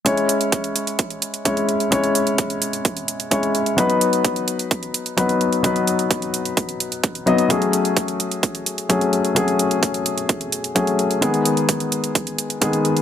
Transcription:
<<
  \new Staff \with { instrumentName = "Grand piano" } { \time 4/4 \key cis \minor \tempo 4 = 129 <gis cis' e' cis''>2. <gis cis' e' cis''>4 | <gis cis' e' cis''>2. <gis cis' e' cis''>4 | <fis b dis' b'>2. <fis b dis' b'>4 | <fis b dis' b'>2. r8 <fis b dis' dis''>8 |
<fis a cis' gis'>2. <fis a cis' gis'>4 | <fis a cis' gis'>2. <fis a cis' gis'>4 | <dis gis b gis'>2. <dis gis b gis'>4 | }
  \new DrumStaff \with { instrumentName = "Drums" } \drummode { \time 4/4 <hh bd>16 hh16 hh16 hh16 <hh bd>16 hh16 hh16 hh16 <hh bd>16 hh16 hh16 hh16 <hh bd>16 hh16 hh16 hh16 | <hh bd>16 hh16 hh16 hh16 <hh bd>16 hh16 hh16 hh16 <hh bd>16 hh16 hh16 hh16 <hh bd>16 hh16 hh16 hh16 | <hh bd>16 hh16 hh16 hh16 <hh bd>16 hh16 hh16 hh16 <hh bd>16 hh16 hh16 hh16 <hh bd>16 hh16 hh16 hh16 | <hh bd>16 hh16 hh16 hh16 <hh bd>16 hh16 hh16 hh16 <hh bd>16 hh16 hh16 hh16 <hh bd>16 hh16 hh16 hh16 |
<hh bd>16 hh16 hh16 hh16 <hh bd>16 hh16 hh16 hh16 <hh bd>16 hh16 hh16 hh16 <hh bd>16 hh16 hh16 hh16 | <hh bd>16 hh16 hh16 hh16 <hh bd>16 hh16 hh16 hh16 <hh bd>16 hh16 hh16 hh16 <hh bd>16 hh16 hh16 hh16 | <hh bd>16 hh16 hh16 hh16 <hh bd>16 hh16 hh16 hh16 <hh bd>16 hh16 hh16 hh16 <hh bd>16 hh16 hh16 hh16 | }
>>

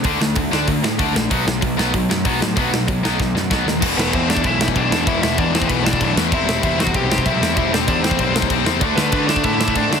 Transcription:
<<
  \new Staff \with { instrumentName = "Lead electric guitar" } { \time 4/4 \key e \minor \tempo 4 = 192 r1 | r1 | r1 | r8 <b b'>8 <c' c''>8 <d' d''>8 <e' e''>8 <e' e''>8 <d' d''>4 |
<e' e''>8 <e' e''>8 <d' d''>8 <c' c''>8 <b b'>8 <d' d''>4 r8 | <e' e''>4 <e' e''>8 <fis' fis''>8 <g' g''>4 <e' e''>4 | <e' e''>8 <d' d''>8 <d' d''>8 <c' c''>4 r4. | r8 <b b'>4 <d' d''>8 <e' e''>4 <d' d''>4 | }
  \new Staff \with { instrumentName = "Distorted electric guitar" } { \clef bass \time 4/4 \key e \minor <d a d'>8 <d a>8 <d a>8 <d a d'>8 <d a>8 <d a>8 <d a d'>8 <d a>8 | <b, fis b>8 <b, fis>8 <b, fis>8 <b, fis b>8 <b, fis>8 <b, fis>8 <b, fis b>8 <b, fis>8 | <b, fis b>8 <b, fis>8 <b, fis>8 <b, fis b>8 <b, fis>8 <b, fis>8 <b, fis b>8 <b, fis>8 | r1 |
r1 | r1 | r1 | <d a d'>8 <d a d'>8 <d a d'>8 <d a d'>8 <d a d'>8 <d a d'>8 <d a d'>8 <d a d'>8 | }
  \new Staff \with { instrumentName = "Distorted electric guitar" } { \clef bass \time 4/4 \key e \minor <d a d'>8 <d a>8 <d a>8 <d a d'>8 <d a>8 <d a>8 <d a d'>8 <d a>8 | <b, fis b>8 <b, fis>8 <b, fis>8 <b, fis b>8 <b, fis>8 <b, fis>8 <b, fis b>8 <b, fis>8 | <b, fis b>8 <b, fis>8 <b, fis>8 <b, fis b>8 <b, fis>8 <b, fis>8 <b, fis b>8 <b, fis>8 | <e, b, e>8 <e, b, e>8 <e, b, e>8 <e, b, e>8 <e, b, e>8 <e, b, e>8 <e, b, e>8 <e, b, e>8 |
<e, b, e>8 <e, b, e>8 <e, b, e>8 <e, b, e>8 <e, b, e>8 <e, b, e>8 <e, b, e>8 <e, b, e>8 | <c g c'>8 <c g c'>8 <c g c'>8 <c g c'>8 <c g c'>8 <c g c'>8 <c g c'>8 <c g c'>8 | <c g c'>8 <c g c'>8 <c g c'>8 <c g c'>8 <c g c'>8 <c g c'>8 <c g c'>8 <c g c'>8 | <d a d'>8 <d a d'>8 <d a d'>8 <d a d'>8 <d a d'>8 <d a d'>8 <d a d'>8 <d a d'>8 | }
  \new Staff \with { instrumentName = "Overdriven electric guitar" } { \clef bass \time 4/4 \key e \minor r1 | r1 | r1 | <e, b, e>2.~ <e, b, e>8 <e, b, e>8 |
<e, b, e>2.~ <e, b, e>8 <e, b, e>8 | <c g c'>2.~ <c g c'>8 <c g c'>8 | <c g c'>2.~ <c g c'>8 <c g c'>8 | <d a d'>2.~ <d a d'>8 <d a d'>8 | }
  \new Staff \with { instrumentName = "Picked electric bass" } { \clef bass \time 4/4 \key e \minor d,8 d,8 d,8 d,8 d,8 a,8 d,8 ais,,8 | b,,8 b,,8 b,,8 b,,8 b,,8 fis,8 b,,8 a,8 | b,,8 b,,8 b,,8 b,,8 b,,8 fis,8 b,,8 dis,8 | e,,8 e,,8 e,4 b,,4 b,,8 e,8 |
e,,8 e,,8 e,4 b,,4 b,,8 e,8 | e,,8 e,,8 e,4 b,,4 b,,8 e,8 | e,,8 e,,8 e,4 b,,4 b,,8 e,8 | d,8 d,8 d4 a,4 a,8 d8 | }
  \new DrumStaff \with { instrumentName = "Drums" } \drummode { \time 4/4 <hho bd>8 sn8 <hho bd>8 sn8 <hho bd>8 sn8 <hho bd>8 sn8 | <hho bd>8 sn8 <hho bd>8 sn8 <hho bd>8 sn8 <hho bd>8 sn8 | <hho bd>8 sn8 <hho bd>8 sn8 <bd sn>8 sn8 <bd sn>8 sn8 | <cymc bd>8 sn8 <cymc bd>8 sn16 bd16 <cymc bd>8 sn16 bd16 <cymc bd>8 sn8 |
<cymc bd>8 sn8 <cymc bd>8 sn16 bd16 <cymc bd>8 sn16 bd16 <cymc bd>8 sn8 | <cymc bd>8 sn8 <cymc bd>8 sn16 bd16 <cymc bd>8 sn16 bd16 <cymc bd>8 sn8 | <cymc bd>8 sn8 <cymc bd>8 sn16 bd16 <cymc bd>8 sn16 bd16 <cymc bd>8 sn8 | <cymc bd>8 sn8 <cymc bd>8 sn16 bd16 <cymc bd>8 sn16 bd16 <cymc bd>8 sn8 | }
>>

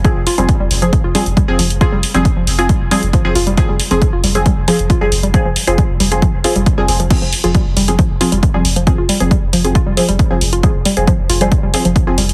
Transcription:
<<
  \new Staff \with { instrumentName = "Synth stab" } { \time 4/4 \key f \minor \tempo 4 = 136 <f c' aes'>16 r8 <f c' aes'>16 r8. <f c' aes'>16 r8 <f c' aes'>16 r8 <f c' aes'>16 r8 | <f c' aes'>16 r8 <f c' aes'>16 r8. <f c' aes'>16 r8 <f c' aes'>16 r8 <f c' aes'>16 r8 | <f c' aes'>16 r8 <f c' aes'>16 r8. <f c' aes'>16 r8 <f c' aes'>16 r8 <f c' aes'>16 r8 | <f c' aes'>16 r8 <f c' aes'>16 r8. <f c' aes'>16 r8 <f c' aes'>16 r8 <f c' aes'>16 <f c' aes'>16 r16 |
<f c' aes'>16 r8 <f c' aes'>16 r8. <f c' aes'>16 r8 <f c' aes'>16 r8 <f c' aes'>16 r8 | <f c' aes'>16 r8 <f c' aes'>16 r8. <f c' aes'>16 r8 <f c' aes'>16 r8 <f c' aes'>16 r8 | <f c' aes'>16 r8 <f c' aes'>16 r8. <f c' aes'>16 r8 <f c' aes'>16 r8 <f c' aes'>16 r8 | }
  \new Staff \with { instrumentName = "Synth arpeggio sound" } { \clef bass \time 4/4 \key f \minor f16 r16 f'16 g16 r16 g16 r16 f16 r16 f'16 g16 r16 g16 r16 f16 r16 | f'16 g16 r16 g16 r16 f16 r16 f'16 g16 r16 g16 r16 f16 r16 f'16 g16 | r16 g16 r16 f16 r16 f'16 g16 r16 g16 r16 f16 r16 f'16 g16 r16 g16 | r16 f16 r16 f'16 g16 r16 g16 r16 f16 r16 f'16 g16 r16 g16 r16 f16 |
r16 f16 r16 f'16 g16 r16 g16 r16 f16 r16 f'16 g16 r16 g16 r16 f16 | r16 f'16 g16 r16 g16 r16 f16 r16 f'16 g16 r16 g16 r16 f16 r16 f'16 | g16 r16 g16 r16 f16 r16 f'16 g16 r16 g16 r16 f16 r16 f'16 g16 r16 | }
  \new Staff \with { instrumentName = "Sub bass" } { \clef bass \time 4/4 \key f \minor r16 f,,16 r16 f,,16 r16 f,,16 f,,16 f,,16 r16 f,,16 r16 f,,16 r16 f,,16 f,,16 f,,16 | r16 f,,16 r16 f,,16 r16 f,,16 f,,16 f,,16 r16 f,,16 r16 f,,16 r16 f,,16 f,,16 f,,16 | r16 f,,16 r16 f,,16 r16 f,,16 f,,16 f,,16 r16 f,,16 r16 f,,16 r16 f,,16 f,,16 f,,16 | r16 f,,16 r16 f,,16 r16 f,,16 f,,16 f,,16 r16 f,,16 r16 f,,16 r16 f,,16 f,,16 f,,16 |
r16 f,,16 r16 f,,16 r16 f,,16 f,,16 f,,16 r16 f,,16 r16 f,,16 r16 f,,16 f,,16 f,,16 | r16 f,,16 r16 f,,16 r16 f,,16 f,,16 f,,16 r16 f,,16 r16 f,,16 r16 f,,16 f,,16 f,,16 | r16 f,,16 r16 f,,16 r16 f,,16 f,,16 f,,16 r16 f,,16 r16 f,,16 r16 f,,16 f,,16 f,,16 | }
  \new DrumStaff \with { instrumentName = "Drums" } \drummode { \time 4/4 <hh bd>8 hho16 hh16 <hh bd>8 hho16 hh16 <hh bd>8 hho16 hh16 <hh bd>8 hho16 hh16 | <hh bd>8 hho16 hh16 <hh bd>8 hho16 hh16 <hh bd>8 hho16 hh16 <hh bd>8 hho16 hh16 | <hh bd>8 hho16 hh16 <hh bd>8 hho16 hh16 <hh bd>8 hho16 hh16 <hh bd>8 hho16 hh16 | <hh bd>8 hho16 hh16 <hh bd>8 hho16 hh16 <hh bd>8 hho16 hh16 <hh bd>8 hho16 hh16 |
<cymc hh bd>8 hho16 hh16 <hh bd>8 hho16 hh16 <hh bd>8 hho16 hh16 <hh bd>8 hho16 hh16 | <hh bd>8 hho16 hh16 <hh bd>8 hho16 hh16 <hh bd>8 hho16 hh16 <hh bd>8 hho16 hh16 | <hh bd>8 hho16 hh16 <hh bd>8 hho16 hh16 <hh bd>8 hho16 hh16 <hh bd>8 hho16 hh16 | }
>>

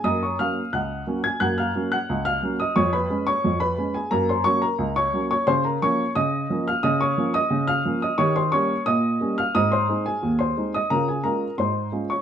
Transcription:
<<
  \new Staff \with { instrumentName = "Upright piano" } { \time 2/4 \key ges \lydian \tempo 4 = 88 <ees'' ees'''>16 <des'' des'''>16 <f'' f'''>8 <ges'' ges'''>8. <aes'' aes'''>16 | <ges'' ges'''>16 <f'' f'''>8 <ges'' ges'''>8 <f'' f'''>8 <ees'' ees'''>16 | <des'' des'''>16 <ces'' ces'''>8 <des'' des'''>8 <ces'' ces'''>8 <aes' aes''>16 | <bes' bes''>16 <c'' c'''>16 <des'' des'''>16 <bes' bes''>8 <des'' des'''>8 <des'' des'''>16 |
\key bes \dorian <c'' c'''>16 <bes' bes''>16 <des'' des'''>8 <ees'' ees'''>8. <f'' f'''>16 | <ees'' ees'''>16 <des'' des'''>8 <ees'' ees'''>8 <f'' f'''>8 <ees'' ees'''>16 | <des'' des'''>16 <c'' c'''>16 <des'' des'''>8 <ees'' ees'''>8. <f'' f'''>16 | <ees'' ees'''>16 <c'' c'''>8 <aes' aes''>8 <c'' c'''>8 <ees'' ees'''>16 |
<bes' bes''>16 <aes' aes''>16 <bes' bes''>8 <c'' c'''>8. <des'' des'''>16 | }
  \new Staff \with { instrumentName = "Upright piano" } { \time 2/4 \key ges \lydian <ges, bes>8 <ges bes des'>8 des,8 <ges bes des'>8 | <ges, bes>8 <ges bes des'>8 des,8 <ges bes des'>8 | f,8 <aes des'>8 f,8 <aes des'>8 | <ges, bes>8 <ges bes des'>8 des,8 <ges bes des'>8 |
\key bes \dorian des8 <f bes des'>8 des8 <f bes des'>8 | des8 <f bes des'>8 des8 <f bes des'>8 | <ees g'>8 <g bes des'>8 bes,8 <g bes des'>8 | <aes, c'>8 <aes c' ees'>8 ees,8 <aes c' ees'>8 |
<des f'>8 <aes des' f'>8 aes,8 <aes des' f'>8 | }
>>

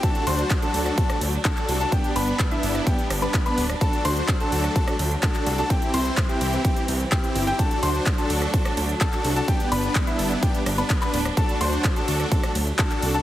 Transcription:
<<
  \new Staff \with { instrumentName = "Grand piano" } { \time 4/4 \key d \mixolydian \tempo 4 = 127 a''8 c'''8. a''8. a''8 r8 a''8. a''16 | g''8 b''8. e''8. g''8 r16 b''8 b''8 r16 | a''8 c'''8. a''8. a''8 r8 a''8. a''16 | g''8 c'''8. g''8. g''8 r8 g''8. g''16 |
a''8 c'''8. a''8. a''8 r8 a''8. a''16 | g''8 b''8. e''8. g''8 r16 b''8 b''8 r16 | a''8 c'''8. a''8. a''8 r8 a''8. a''16 | }
  \new Staff \with { instrumentName = "Supersaw synth" } { \time 4/4 \key d \mixolydian <d' fis' a'>8 <d' fis' c''>8. <d' fis' a'>8. <d' fis' a'>8 r8 <d' fis' a'>8. <d' fis' a'>16 | <b d' g'>8 <b d' b'>8. <b d' e'>8. <b d' g'>8 r16 <b d' b'>8 <b d' b'>8 r16 | <d' fis' a'>8 <d' fis' c''>8. <d' fis' a'>8. <d' fis' a'>8 r8 <d' fis' a'>8. <d' fis' a'>16 | <c' e' g'>8 <c' e' c''>8. <c' e' g'>8. <c' e' g'>8 r8 <c' e' g'>8. <c' e' g'>16 |
<d' fis' a'>8 <d' fis' c''>8. <d' fis' a'>8. <d' fis' a'>8 r8 <d' fis' a'>8. <d' fis' a'>16 | <b d' g'>8 <b d' b'>8. <b d' e'>8. <b d' g'>8 r16 <b d' b'>8 <b d' b'>8 r16 | <d' fis' a'>8 <d' fis' c''>8. <d' fis' a'>8. <d' fis' a'>8 r8 <d' fis' a'>8. <d' fis' a'>16 | }
  \new Staff \with { instrumentName = "String section" } { \time 4/4 \key d \mixolydian << { d'1~ | d'1~ | d'1 | c'1 |
d'1 | d'1~ | d'1 | } \\ { <fis a>1 | <g b>1 | <fis a>1 | <e g>1 |
<fis a>1 | <g b>1 | <fis a>1 | } >> }
  \new Staff \with { instrumentName = "Analog synth bass" } { \clef bass \time 4/4 \key d \mixolydian r8 d,8 r8 d,8 r8 d,8 r8 c,8 | r8 g,,8 r8 g,,8 r8 g,,8 r8 d,,8 | r8 d,8 r8 d,8 r8 d,8 r8 c,8 | r8 c,8 r8 c,8 r8 c,8 r8 g,,8 |
r8 d,8 r8 d,8 r8 d,8 r8 c,8 | r8 g,,8 r8 g,,8 r8 g,,8 r8 d,,8 | r8 d,8 r8 d,8 r8 d,8 r8 c,8 | }
  \new DrumStaff \with { instrumentName = "Drums" } \drummode { \time 4/4 <hh bd cymr>16 hh16 <hho cymr>16 hh16 <hc hh bd cymr>16 hh16 <hho cymr>16 <hh ss>16 <hh bd cymr>16 <hh ss>16 <hho cymr>16 hh16 <hc hh bd cymr>16 <hc hh>16 <hho cymr>16 hh16 | <hh bd cymr>16 hh16 <hho cymr>8 <hc hh bd cymr>16 hh16 <hho cymr>16 <hh ss>16 <hh bd cymr>16 hh16 <hho cymr ss>16 hh16 <hc hh bd cymr>16 hh16 <hho cymr>16 <hh ss>16 | <hh bd cymr>16 hh16 <hho cymr>16 hh16 <hc hh bd cymr>16 hh16 <hho cymr>16 <hh ss>16 <hh bd cymr>16 <hh ss>16 <hho cymr>16 hh16 <hc hh bd cymr>16 <hc hh>16 <hho cymr>16 hh16 | <hh bd cymr>16 hh16 <hho cymr>16 hh16 <hc hh bd cymr>16 hh16 <hho cymr>16 hh16 <hh bd cymr>16 hh16 <hho cymr>16 hh16 <hc hh bd cymr>16 hh16 <hho cymr>16 hh16 |
<hh bd cymr>16 hh16 <hho cymr>16 hh16 <hc hh bd cymr>16 hh16 <hho cymr>16 <hh ss>16 <hh bd cymr>16 <hh ss>16 <hho cymr>16 hh16 <hc hh bd cymr>16 <hc hh>16 <hho cymr>16 hh16 | <hh bd cymr>16 hh16 <hho cymr>16 hh16 <hc hh bd cymr>16 hh16 <hho cymr>16 hh16 <hh bd cymr>16 hh16 <hho cymr ss>16 hh16 <hc hh bd cymr>16 <hc hh>16 <hho cymr>16 <hh ss>16 | <hh bd cymr>16 hh16 <hho cymr>16 hh16 <hc hh bd cymr>16 hh16 <hho cymr>16 <hh ss>16 <hh bd cymr>16 <hh ss>16 <hho cymr>16 hh16 <hc hh bd cymr>16 <hc hh>16 <hho cymr>16 hh16 | }
>>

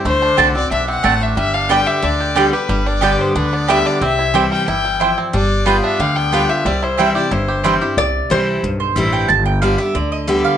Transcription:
<<
  \new Staff \with { instrumentName = "Fiddle" } { \time 4/4 \key c \major \tempo 4 = 182 c''4. d''8 e''8 fis''4 e''8 | e''8 f''8 g''8 e''8 d''4. b'8~ | b'8 d''4 c''8 b'8 d''8 e''8 d''8 | e''4. g''8 g''4. r8 |
d''4. e''8 f''8 g''4 e''8 | d''8 c''8 e''8 d''8 c''4. r8 | r1 | r1 | }
  \new Staff \with { instrumentName = "Resonator guitar played with a steel bar" } { \time 4/4 \key c \major r1 | r1 | r1 | r1 |
r1 | r1 | d''4 c''4~ c''16 r4. r16 | r1 | }
  \new Staff \with { instrumentName = "Mandolin" } { \time 4/4 \key c \major r4 <c' fis' d'' a''>8 r4. <c' fis' d'' a''>8 r8 | r4 <b g' d'' g''>8 r4. <b g' d'' g''>8 r8 | r4 <b g' d'' g''>8 r4. <b g' d'' g''>8 r8 | r4 <c' e' c'' g''>8 r4. <c' e' c'' g''>8 r8 |
r4 <b f' b' g''>8 r4. <b f' b' g''>8 r8 | r4 <c' e' c'' g''>8 r4. <c' e' c'' g''>8 r8 | r2 r8 c''8 e''8 g''8 | a''8 g''8 f''8 e''8 d''8 ees''8 e''8 f''8 | }
  \new Staff \with { instrumentName = "Five-string banjo" } { \time 4/4 \key c \major a8 d'8 d'8 c'8 d'8 c'8 a8 d'8 | g8 d'8 g8 g'8 d'8 g'8 g8 g'8 | g8 d'8 g'8 b8 d'8 b8 g8 d'8 | c'8 e'8 g'8 g8 e'8 g8 e'8 c'8 |
d'4 b8 d'8 g8 b8 d'8 g'8 | g8 e'8 g8 g'8 e'8 g'8 g8 g'8 | r1 | r1 | }
  \new Staff \with { instrumentName = "Steel-string acoustic guitar" } { \clef bass \time 4/4 \key c \major << { r4 <d a c' fis'>8 <c' fis'>8 r2 | r4 <d g b g'>4 r4 <d g b g'>8 <b g'>8 | r4 <d g b g'>4 r4 <d g b g'>4 | r4 <e g c' e'>4 r2 |
r4 <g b f'>4 r4 <g b f'>8 <b f'>8 | r4 <e g c' e'>8 <c' e'>8 r4 <e g c' e'>8 <c' e'>8 | r4 <e g c' e'>4 r4 <e g c' e'>4 | r4 <d g b g'>8 <b g'>8 r4 <d g b g'>4 | } \\ { d2 b,4 a,4 | g,2 d2 | g,2 d2 | c2 e4 f4 |
g2 d2 | c2 g,2 | c2 g,2 | g,2 d2 | } >> }
  \new Staff \with { instrumentName = "Upright bass" } { \clef bass \time 4/4 \key c \major d,4 c,4 b,,4 a,,4 | g,,2 d,2 | g,,2 d,2 | c,2 g,,2 |
g,,2 d,2 | c,2 g,,2 | c,4 c,4 b,,4 a,,4 | g,,2 d,2 | }
>>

